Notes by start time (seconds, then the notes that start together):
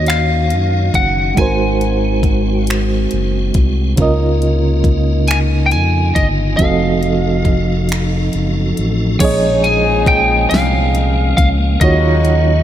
Already playing: D#2 D#3 A#3 C#4 D#4 F#4 C#5
0.06 F5, finger snap, closed hi-hat
0.50 F#2, closed hi-hat
0.94 F#1 F#5, kick, closed hi-hat
1.35 G#1 G#3 C4 D#4 F#4 G#5, kick, closed hi-hat
1.39 A#4 C5
1.81 closed hi-hat
2.23 kick, closed hi-hat
2.67 finger snap, closed hi-hat
3.11 F#1, closed hi-hat
3.54 C2, kick, closed hi-hat
3.96 C#2 C#3 A#3 C#4 D#4 F4, kick, closed hi-hat
4.00 A#4 D#5
4.42 closed hi-hat
4.84 kick, closed hi-hat
5.28 G#5, finger snap, closed hi-hat
5.66 G5
5.71 F2 G#5, closed hi-hat
6.15 G1 D#5, kick, closed hi-hat
6.57 F1 F3 C4 F#4 A4 F5, kick, closed hi-hat
6.61 F#4 A4 D#5
7.03 closed hi-hat
7.45 kick, closed hi-hat
7.89 finger snap, closed hi-hat
8.33 F#1, closed hi-hat
8.77 A1, closed hi-hat
9.19 A#1 A#2 F3 G#3 A#3 C#4 D#4 G#4 C#5, kick, closed hi-hat, crash
9.23 C#5 D#5
9.64 G#5, closed hi-hat
10.06 G5, kick, closed hi-hat
10.50 C2 F5, closed hi-hat
10.54 snare
10.95 closed hi-hat
11.37 C#2 F5, kick, closed hi-hat
11.81 D#2 C#3 D#3 F#3 A#3 D#4 F4 F#4 C#5 D#5 F5, kick, closed hi-hat
12.25 closed hi-hat